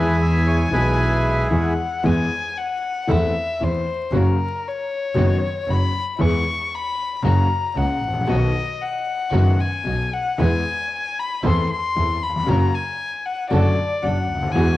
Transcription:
Already playing: E2 E3 G#3 B3 E4 G#4 B4 G#5
0.22 E5
0.47 C#5
0.71 B1 B2 E3 G#3 B3 E4 G#4 B4
0.75 G#4
1.51 E2 E3 G#3 B3 G#4 F#5
2.03 E2 E3 G#3 B3 E4 G#4 G#5
2.58 F#5
3.07 E2 E3 A3 C4 E4 A4 E5
3.60 E2 E3 A3 C4 E4 C5
4.12 F#1 F#2 C#3 F#3 A#3 C#4 F#4
4.17 A#4
4.68 C#5
5.15 F#1 F#2 D#3 F#3 B3 D#4 F#4
5.67 F#1 F#2 F#3 B3 D#4 F#4 B5
6.19 E2 E3 G#3 B3 E4 G#4 C#6
6.75 B5
7.23 F#1 F#2 C#3 F#3 A#3 C#4 F#4 A#5
7.75 C#2 C#3 A#3 C#4 F#4 F#5
8.01 A1
8.08 G#1
8.13 A1
8.20 A#1
8.27 B1 B2 D#3 F#3 B3 D#4 F#4 D#5
8.82 F#5
9.32 F#1 F#2 D#3 F#3 B3 D#4 F#4
9.60 G#5
9.84 B1 B2 B3 D#4 F#4
10.13 F#5
10.38 E2 E3 G#3 B3 E4 G#4 G#5
11.19 B5
11.43 E2 E3 A3 C4 E4 A4 C6
11.70 C6
11.96 E2 E3 C4 E4 A4
12.23 B5
12.29 D#2
12.36 E2
12.43 F2 F#2 C#3 F#3 A#3
12.47 F#1 C#4 F#4 A#4 A#5
12.74 G#5
13.25 F#5
13.51 F#1 F#2 D3 F#3 A3 D4 F#4 A4 D5
14.03 F#1 F#2 F#3 D4 F#4 A4 F#5
14.28 D2
14.35 C#2
14.42 D2
14.47 D#2
14.52 E2 E3 G#3 B3 E4 F#4 G#4 G#5

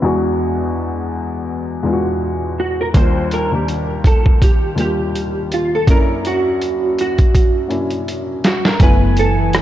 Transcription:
0.02 E2 G#3 B3 D4 F#4
1.83 E2 G#3 B3 D4 F4
1.93 F#4
2.60 F#4
2.81 A#4
2.94 D#2 G3 A#3 D4 F4 C5, kick, closed hi-hat
3.31 A#4, closed hi-hat
3.51 D#2 G3 A#3 D4 G4
3.68 closed hi-hat
4.04 A4, kick, closed hi-hat
4.26 kick
4.42 G4, kick, closed hi-hat
4.75 D#2 G3 A#3 D4 F4, closed hi-hat
4.80 G4
5.16 closed hi-hat
5.52 F4, closed hi-hat
5.75 A4
5.87 F#2 A#3 C#4 D4 E4 A#4, kick, closed hi-hat
6.25 F#4, closed hi-hat
6.61 closed hi-hat
6.99 F#4, closed hi-hat
7.18 kick, closed hi-hat
7.35 kick, closed hi-hat
7.68 F#2 A#3 C#4 D4 E4, closed hi-hat
7.90 closed hi-hat
8.08 closed hi-hat
8.44 F#4, snare, closed hi-hat
8.65 A#4, snare
8.80 F#1 E3 A3 B3 E4 B4 G#5, kick, closed hi-hat
9.17 A4, closed hi-hat
9.53 cross-stick, closed hi-hat

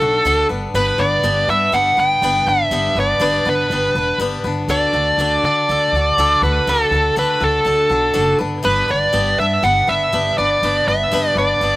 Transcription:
Already playing: A4
0.00 B1 D4 F#4 A4
0.25 D2 D3 D4 F#4 A4
0.49 G1 B3 D4 B4
0.74 G1 G3 B3 D4 B4
0.98 G1 B3 D4 B4 D5
1.23 G1 G3 B3 D4 B4
1.48 G2 B3 D4 B4 E5
1.72 G1 G3 B3 D4 B4 F#5
1.97 G1 B3 D4 B4 G5
2.22 G1 G3 B3 D4 B4
2.47 G1 B3 D4 B4 E5
2.71 G1 G3 B3 D4 B4
2.95 G1 B3 B4
2.99 D4 D5
3.20 G1 G3 B3 D4 B4
3.45 G1 B3 D4 B4
3.70 G1 G3 B3 D4 B4
3.95 E1 B3 D4 B4
4.18 G1 G3 B3 D4 B4
4.44 G1 B3 D4 B4
4.67 D2 D3 D4 F#4 A4 D5
4.93 D2 D4 F#4 A4
5.18 D2 D3 D4 F#4 A4
5.43 D3 D4 F#4 A4 D5
5.69 D2 D3 D4 F#4 A4
5.92 D2 F#4 A4
5.97 D4
6.17 D2 D3 D4 F#4 A4
6.41 D2 D4 F#4 A4 B4
6.66 D2 D3 D4 F#4 A4
6.91 D2 D4 F#4 A4
7.16 D2 D3 D4 F#4 A4 B4
7.40 D2 D4 F#4 A4
7.65 D2 D3 D4 F#4 A4
7.89 B1 D4 F#4 A4
8.14 F#1 D3 D4 F#4 A4
8.39 G1 B3 D4 B4
8.63 G1 G3 B3 D4 B4
8.88 G1 B3 D4 B4 D5
9.13 G1 G3 B3 D4 B4
9.38 G2 B3 D4 B4 E5
9.63 G1 G3 B3 D4 B4 F#5
9.87 G1 B3 D4 B4 E5
10.12 G1 G3 B3 D4 B4
10.38 G1 B3 D4 B4 D5
10.62 G1 G3 B3 D4 B4
10.87 G1 B3 D4 B4 E5
11.11 G1 G3 B3 D4 B4
11.35 G1 B3 D4 B4 D5
11.61 G1 G3 B3 D4 B4

